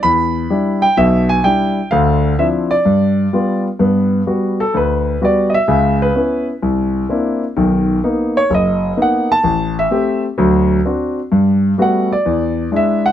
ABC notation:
X:1
M:4/4
L:1/8
Q:"Swing" 1/4=128
K:Ephr
V:1 name="Grand piano"
b3 g e _a g2 | f2 e d4 z | [K:G] z3 A B2 d [_e=e]- | [_e=e] B2 z4 z |
z3 ^c ^d2 f a- | a e2 z4 z | z2 f d3 e f |]
V:2 name="Grand piano"
E,,2 [G,DE] z [B,,,B,,]2 [G,DE] z | [D,,D,]2 [F,CDE] z G,,2 [G,B,F] z | [K:G] [G,,B,]2 [G,B,F] z D,,2 [G,B,F] z | [^C,,^C,]2 [B,^CE] z =C,,2 [_B,=CDE] z |
[B,,,^D,]2 [^A,B,^D] z F,,,2 [A,B,D] z | A,,,2 [A,CG] z [D,,F,]2 [CDF] z | G,,2 [G,A,B,F] z E,,2 [^G,DE] z |]